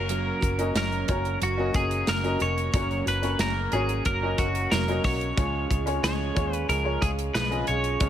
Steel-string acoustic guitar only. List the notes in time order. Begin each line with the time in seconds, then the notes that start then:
0.08 F#2 C#3 F#3 A#3 C#4 F#4
0.41 F#3 A#3 C#4 F#4
0.74 F#2 C#3 F#3 A#3 C#4 F#4
1.08 F#3 A#3 C#4 F#4
1.40 F#3 A#3 C#4 F#4
1.73 F#3 A#3 C#4 F#4
2.06 F#2 C#3 F#3 A#3 C#4 F#4
2.39 F#3 A#3 C#4 F#4
2.72 F#2 C#3 F#3 A#3 C#4 F#4
3.06 F#3 A#3 C#4 F#4
3.39 F#2 C#3 F#3 A#3 C#4 F#4
3.72 F#3 A#3 C#4 F#4
4.04 F#3 A#3 C#4 F#4
4.38 F#3 A#3 C#4 F#4
4.72 F#2 C#3 F#3 A#3 C#4 F#4
5.04 F#3 A#3 C#4 F#4
5.37 C#3 F3 G#3 C#4 F4
5.70 G#3 C#4 F4
6.03 C#3 F3 G#3 C#4 F4
6.36 G#3 C#4 F4
6.68 F3 G#3 C#4 F4
7.02 G#3 C#4 F4
7.35 C#3 F3 G#3 C#4 F4
7.68 G#3 C#4 F4
8.01 C#3 F3 G#3 C#4 F4